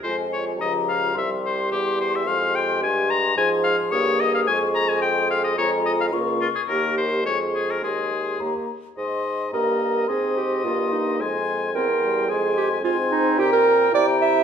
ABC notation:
X:1
M:2/4
L:1/16
Q:1/4=108
K:Fm
V:1 name="Flute"
a4 b4 | c'8- | c'8 | c'4 e'4 |
[K:Ab] d'4 c'4 | b4 d'4- | d'2 z2 d'4 | c'4 b2 z2 |
c'4 b4 | c'8 | c'4 c'4 | c'4 c'4 |
[K:Gdor] b4 b4 |]
V:2 name="Oboe"
c2 d2 e2 f2 | =e2 c2 G2 c e | f2 g2 a2 b2 | a2 f2 d2 e f |
[K:Ab] a2 b a g2 f e | d2 e f z2 F A | B2 c2 d2 A B | A4 z4 |
e4 e4 | e8 | a4 g4 | a4 a4 |
[K:Gdor] g4 g4 |]
V:3 name="Clarinet"
F4 G4 | G8- | G8 | A8 |
[K:Ab] A8 | F4 F2 z2 | G4 A4 | A4 G2 z2 |
z4 B4 | A2 G2 F2 E2 | z4 B4 | A2 G2 F2 E2 |
[K:Gdor] G B3 d2 e2 |]
V:4 name="French horn" clef=bass
A,4 F,4 | G,8 | A,8 | F,4 B,4 |
[K:Ab] A,8 | A,4 B,2 z2 | B,4 A,4 | A,4 B,2 z2 |
z4 B,4 | C4 B,4 | A,4 C2 G,2 | A,4 C4- |
[K:Gdor] C4 E4 |]
V:5 name="Bassoon" clef=bass
F,,4 D,,4 | C,,4 =E,,4 | F,,4 G,,4 | A,,4 G,,4 |
[K:Ab] F,,8 | F,,4 D,,2 z2 | E,,4 F,,4 | E,,4 E,,2 z2 |
A,,4 G,,4 | A,,4 G,,4 | F,,4 =E,,4 | F,,4 A,,4 |
[K:Gdor] B,,4 C,4 |]